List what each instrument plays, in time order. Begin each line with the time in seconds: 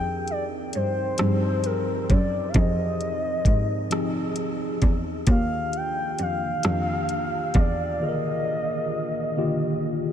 Already playing: cello F2, tine electric piano F3 C4 D#4 G4 G#4, soft synth lead G5
0.28 soft synth lead D5, closed hi-hat
0.73 cello G2, soft synth lead C5, closed hi-hat
1.18 cello G2, tine electric piano F3 C4 D#4 G4 G#4, cross-stick, closed hi-hat
1.64 soft synth lead A#4, closed hi-hat
2.10 cello F#2, soft synth lead D5, kick, closed hi-hat
2.49 soft synth lead F5
2.54 cello F2, tine electric piano F3 C4 D#4 G4 G#4, soft synth lead D#5, kick, closed hi-hat
3.01 closed hi-hat
3.45 cello G#2, kick, closed hi-hat
3.90 tine electric piano F3 C4 D#4 G4 G#4, cross-stick, closed hi-hat
4.36 closed hi-hat
4.82 cello E2, kick, closed hi-hat
5.27 cello D#2, tine electric piano D#3 A#3 D4 F4 G4, kick, closed hi-hat
5.31 soft synth lead F5
5.73 soft synth lead G5, closed hi-hat
6.19 cello F2, soft synth lead F5, closed hi-hat
6.63 cello F2, tine electric piano D#3 A#3 D4 F4 G4, cross-stick, closed hi-hat
7.09 closed hi-hat
7.54 cello E2, kick, closed hi-hat
7.58 soft synth lead D5
8.00 tine electric piano D3 D#3 A#3 F4 G#4, soft synth lead D#5
8.09 tine electric piano A#4
9.36 tine electric piano D3 D#3 A#3 F4 G4